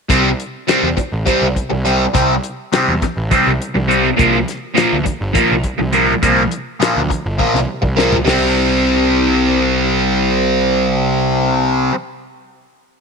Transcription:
0.09 C2 C3 G3 C4, kick, closed hi-hat
0.40 closed hi-hat
0.67 C3 G3 C4, snare, closed hi-hat
0.83 E2
0.97 muted distorted electric guitar stroke, kick, closed hi-hat
1.12 A1
1.25 C3 G3 C4, kick, closed hi-hat
1.42 C2
1.56 kick, closed hi-hat
1.70 C2, muted distorted electric guitar stroke
1.85 C3 G3 C4, closed hi-hat
2.13 C2 C3 G3 C4, kick, closed hi-hat
2.44 closed hi-hat
2.72 C3 G3 C4, snare, closed hi-hat
2.88 E2
3.02 muted distorted electric guitar stroke, kick, snare, closed hi-hat
3.17 A1
3.31 C3 G3 C4, kick, snare, closed hi-hat
3.47 C2
3.62 closed hi-hat
3.74 C2, muted distorted electric guitar stroke
3.88 C3 G3 C4, closed hi-hat
4.16 C2 A#2 F3 A#3, kick, closed hi-hat
4.48 snare, closed hi-hat
4.74 A#2 F3 A#3, snare, closed hi-hat
4.93 D2
5.04 muted distorted electric guitar stroke, kick, closed hi-hat
5.21 G1
5.33 A#2 F3 A#3, kick, closed hi-hat
5.51 C2
5.64 kick, closed hi-hat
5.78 C2, muted distorted electric guitar stroke
5.93 A#2 F3 A#3, closed hi-hat
6.22 C2 A#2 F3 A#3, kick, closed hi-hat
6.51 closed hi-hat
6.80 A#2 F3 A#3, snare, closed hi-hat
6.96 D2
7.09 muted distorted electric guitar stroke, kick, closed hi-hat
7.25 G1
7.38 A#2 F3 A#3, kick, high tom
7.54 C2, snare
7.82 C2, muted distorted electric guitar stroke, kick
7.96 A#2 F3 A#3, snare
8.12 floor tom
8.25 C2 C3 G3, snare, open hi-hat
8.29 C4

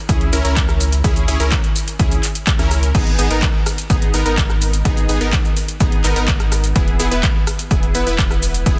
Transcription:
0.09 C#2 C#4 E4 G#4, kick, closed hi-hat, shaker
0.21 closed hi-hat
0.33 C#2 C#4 E4 A#4, open hi-hat, shaker
0.45 C#2 C#4 E4 A#4, closed hi-hat, shaker
0.57 kick, clap, closed hi-hat, shaker
0.69 cross-stick, shaker
0.81 open hi-hat, shaker
0.92 closed hi-hat, shaker
1.04 C#2 C#4 E4 G#4, kick, closed hi-hat, shaker
1.16 closed hi-hat, shaker
1.28 C#2 C#4 E4 G#4, open hi-hat, shaker
1.40 C#2 C#4 E4 A#4, closed hi-hat, shaker
1.52 kick, clap, closed hi-hat, shaker
1.64 closed hi-hat, shaker
1.76 open hi-hat, shaker
1.88 closed hi-hat, shaker
1.99 C#2 C#4 E4 G#4, kick, closed hi-hat, shaker
2.12 closed hi-hat, shaker
2.23 clap, open hi-hat, shaker
2.35 closed hi-hat, shaker
2.47 kick, clap, closed hi-hat, shaker
2.59 C#2 C#4 E4 A#4, cross-stick, closed hi-hat, shaker
2.71 cross-stick, open hi-hat, shaker
2.83 closed hi-hat, shaker
2.95 G#1 B3 D#4 G#4, kick, closed hi-hat, crash, shaker
3.07 closed hi-hat
3.19 G#1 B3 D#4 G#4, open hi-hat, shaker
3.30 G#1 B3 D#4 A#4, closed hi-hat, shaker
3.42 kick, clap, closed hi-hat, shaker
3.66 cross-stick, open hi-hat, shaker
3.78 closed hi-hat, shaker
3.90 G#1 B3 D#4 G#4, kick, closed hi-hat, shaker
4.02 closed hi-hat
4.14 G#1 B3 D#4 A#4, open hi-hat, shaker
4.26 G#1 B3 D#4 A#4, closed hi-hat, shaker
4.38 kick, clap, closed hi-hat, shaker
4.50 cross-stick, shaker
4.62 open hi-hat, shaker
4.73 closed hi-hat, shaker
4.85 G#1 B3 D#4 G#4, kick, closed hi-hat, shaker
4.97 closed hi-hat, shaker
5.09 G#1 B3 D#4 G#4, open hi-hat, shaker
5.21 G#1 B3 D#4 A#4, closed hi-hat, shaker
5.33 kick, clap, closed hi-hat, shaker
5.45 shaker
5.57 open hi-hat, shaker
5.68 closed hi-hat, shaker
5.80 G#1 B3 D#4 G#4, kick, closed hi-hat, shaker
5.92 closed hi-hat
6.04 G#1 B3 D#4 A#4, clap, open hi-hat, shaker
6.16 G#1 B3 D#4 A#4, closed hi-hat, shaker
6.28 kick, clap, closed hi-hat, shaker
6.40 cross-stick, closed hi-hat, shaker
6.52 cross-stick, open hi-hat, shaker
6.64 closed hi-hat, shaker
6.76 E1 B3 E4 G#4, kick, closed hi-hat, shaker
6.88 closed hi-hat
6.99 E1 B3 E4 G#4, open hi-hat, shaker
7.11 E1 B3 E4 B4, closed hi-hat, shaker
7.23 kick, clap, closed hi-hat, shaker
7.47 cross-stick, open hi-hat, shaker
7.59 closed hi-hat, shaker
7.71 E1 B3 E4 G#4, kick, closed hi-hat, shaker
7.83 closed hi-hat
7.95 E1 B3 E4 B4, open hi-hat, shaker
8.07 E1 B3 E4 B4, closed hi-hat, shaker
8.19 kick, clap, closed hi-hat, shaker
8.31 cross-stick, shaker
8.42 open hi-hat, shaker
8.54 closed hi-hat, shaker
8.66 E1 B3 E4 G#4, kick, closed hi-hat, shaker

